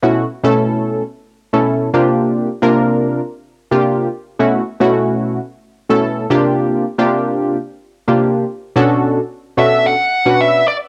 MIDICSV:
0, 0, Header, 1, 3, 480
1, 0, Start_track
1, 0, Tempo, 545455
1, 28, Time_signature, 4, 2, 24, 8
1, 9575, End_track
2, 0, Start_track
2, 0, Title_t, "Lead electric guitar"
2, 0, Program_c, 0, 29
2, 8436, Note_on_c, 0, 76, 99
2, 8678, Note_on_c, 0, 78, 108
2, 8679, Note_off_c, 0, 76, 0
2, 9158, Note_on_c, 0, 76, 101
2, 9167, Note_off_c, 0, 78, 0
2, 9393, Note_off_c, 0, 76, 0
2, 9397, Note_on_c, 0, 74, 97
2, 9460, Note_off_c, 0, 74, 0
2, 9575, End_track
3, 0, Start_track
3, 0, Title_t, "Analog polysynth"
3, 0, Program_c, 1, 90
3, 23, Note_on_c, 1, 47, 86
3, 24, Note_on_c, 1, 57, 74
3, 27, Note_on_c, 1, 61, 73
3, 27, Note_on_c, 1, 64, 82
3, 30, Note_on_c, 1, 66, 92
3, 218, Note_off_c, 1, 47, 0
3, 219, Note_off_c, 1, 57, 0
3, 220, Note_off_c, 1, 61, 0
3, 221, Note_off_c, 1, 64, 0
3, 222, Note_off_c, 1, 66, 0
3, 384, Note_on_c, 1, 47, 85
3, 386, Note_on_c, 1, 57, 88
3, 388, Note_on_c, 1, 61, 88
3, 390, Note_on_c, 1, 64, 85
3, 392, Note_on_c, 1, 69, 108
3, 900, Note_off_c, 1, 47, 0
3, 901, Note_off_c, 1, 57, 0
3, 903, Note_off_c, 1, 61, 0
3, 903, Note_off_c, 1, 64, 0
3, 905, Note_off_c, 1, 69, 0
3, 1346, Note_on_c, 1, 47, 73
3, 1346, Note_on_c, 1, 57, 74
3, 1350, Note_on_c, 1, 61, 75
3, 1352, Note_on_c, 1, 64, 72
3, 1352, Note_on_c, 1, 69, 92
3, 1668, Note_off_c, 1, 47, 0
3, 1669, Note_off_c, 1, 57, 0
3, 1671, Note_off_c, 1, 61, 0
3, 1671, Note_off_c, 1, 64, 0
3, 1671, Note_off_c, 1, 69, 0
3, 1702, Note_on_c, 1, 48, 90
3, 1704, Note_on_c, 1, 58, 85
3, 1705, Note_on_c, 1, 62, 91
3, 1708, Note_on_c, 1, 65, 81
3, 1708, Note_on_c, 1, 67, 100
3, 2185, Note_off_c, 1, 48, 0
3, 2186, Note_off_c, 1, 58, 0
3, 2187, Note_off_c, 1, 62, 0
3, 2188, Note_off_c, 1, 65, 0
3, 2188, Note_off_c, 1, 67, 0
3, 2306, Note_on_c, 1, 48, 95
3, 2307, Note_on_c, 1, 58, 78
3, 2308, Note_on_c, 1, 62, 86
3, 2311, Note_on_c, 1, 65, 82
3, 2312, Note_on_c, 1, 70, 99
3, 2821, Note_off_c, 1, 48, 0
3, 2822, Note_off_c, 1, 58, 0
3, 2823, Note_off_c, 1, 62, 0
3, 2824, Note_off_c, 1, 65, 0
3, 2825, Note_off_c, 1, 70, 0
3, 3267, Note_on_c, 1, 48, 84
3, 3268, Note_on_c, 1, 58, 74
3, 3270, Note_on_c, 1, 62, 74
3, 3272, Note_on_c, 1, 65, 76
3, 3274, Note_on_c, 1, 67, 92
3, 3589, Note_off_c, 1, 48, 0
3, 3590, Note_off_c, 1, 58, 0
3, 3590, Note_off_c, 1, 62, 0
3, 3592, Note_off_c, 1, 65, 0
3, 3593, Note_off_c, 1, 67, 0
3, 3866, Note_on_c, 1, 47, 90
3, 3867, Note_on_c, 1, 57, 76
3, 3869, Note_on_c, 1, 61, 75
3, 3871, Note_on_c, 1, 64, 76
3, 3873, Note_on_c, 1, 66, 88
3, 4060, Note_off_c, 1, 47, 0
3, 4060, Note_off_c, 1, 57, 0
3, 4061, Note_off_c, 1, 61, 0
3, 4062, Note_off_c, 1, 64, 0
3, 4063, Note_off_c, 1, 66, 0
3, 4226, Note_on_c, 1, 47, 96
3, 4227, Note_on_c, 1, 57, 80
3, 4230, Note_on_c, 1, 61, 79
3, 4231, Note_on_c, 1, 64, 77
3, 4233, Note_on_c, 1, 66, 101
3, 4741, Note_off_c, 1, 47, 0
3, 4742, Note_off_c, 1, 57, 0
3, 4743, Note_off_c, 1, 61, 0
3, 4744, Note_off_c, 1, 64, 0
3, 4745, Note_off_c, 1, 66, 0
3, 5186, Note_on_c, 1, 47, 78
3, 5189, Note_on_c, 1, 57, 70
3, 5189, Note_on_c, 1, 61, 73
3, 5192, Note_on_c, 1, 64, 66
3, 5193, Note_on_c, 1, 69, 97
3, 5508, Note_off_c, 1, 47, 0
3, 5510, Note_off_c, 1, 57, 0
3, 5510, Note_off_c, 1, 61, 0
3, 5512, Note_off_c, 1, 64, 0
3, 5512, Note_off_c, 1, 69, 0
3, 5544, Note_on_c, 1, 48, 96
3, 5545, Note_on_c, 1, 58, 84
3, 5548, Note_on_c, 1, 62, 86
3, 5549, Note_on_c, 1, 65, 84
3, 5552, Note_on_c, 1, 67, 104
3, 6026, Note_off_c, 1, 48, 0
3, 6026, Note_off_c, 1, 58, 0
3, 6028, Note_off_c, 1, 62, 0
3, 6029, Note_off_c, 1, 65, 0
3, 6030, Note_off_c, 1, 67, 0
3, 6145, Note_on_c, 1, 48, 94
3, 6147, Note_on_c, 1, 58, 83
3, 6148, Note_on_c, 1, 62, 83
3, 6149, Note_on_c, 1, 65, 79
3, 6151, Note_on_c, 1, 67, 98
3, 6661, Note_off_c, 1, 48, 0
3, 6662, Note_off_c, 1, 58, 0
3, 6662, Note_off_c, 1, 62, 0
3, 6663, Note_off_c, 1, 65, 0
3, 6664, Note_off_c, 1, 67, 0
3, 7107, Note_on_c, 1, 58, 76
3, 7108, Note_on_c, 1, 48, 78
3, 7110, Note_on_c, 1, 62, 77
3, 7111, Note_on_c, 1, 65, 71
3, 7113, Note_on_c, 1, 67, 94
3, 7429, Note_off_c, 1, 48, 0
3, 7429, Note_off_c, 1, 58, 0
3, 7431, Note_off_c, 1, 62, 0
3, 7431, Note_off_c, 1, 65, 0
3, 7432, Note_off_c, 1, 67, 0
3, 7706, Note_on_c, 1, 47, 102
3, 7707, Note_on_c, 1, 61, 91
3, 7710, Note_on_c, 1, 62, 95
3, 7712, Note_on_c, 1, 66, 97
3, 7714, Note_on_c, 1, 69, 103
3, 8093, Note_off_c, 1, 47, 0
3, 8093, Note_off_c, 1, 61, 0
3, 8095, Note_off_c, 1, 62, 0
3, 8096, Note_off_c, 1, 66, 0
3, 8097, Note_off_c, 1, 69, 0
3, 8424, Note_on_c, 1, 47, 80
3, 8425, Note_on_c, 1, 61, 73
3, 8428, Note_on_c, 1, 62, 69
3, 8428, Note_on_c, 1, 66, 76
3, 8432, Note_on_c, 1, 69, 83
3, 8748, Note_off_c, 1, 47, 0
3, 8748, Note_off_c, 1, 61, 0
3, 8750, Note_off_c, 1, 62, 0
3, 8750, Note_off_c, 1, 66, 0
3, 8751, Note_off_c, 1, 69, 0
3, 9024, Note_on_c, 1, 47, 82
3, 9026, Note_on_c, 1, 61, 68
3, 9027, Note_on_c, 1, 62, 73
3, 9029, Note_on_c, 1, 66, 73
3, 9030, Note_on_c, 1, 71, 86
3, 9347, Note_off_c, 1, 47, 0
3, 9348, Note_off_c, 1, 61, 0
3, 9349, Note_off_c, 1, 62, 0
3, 9350, Note_off_c, 1, 66, 0
3, 9350, Note_off_c, 1, 71, 0
3, 9575, End_track
0, 0, End_of_file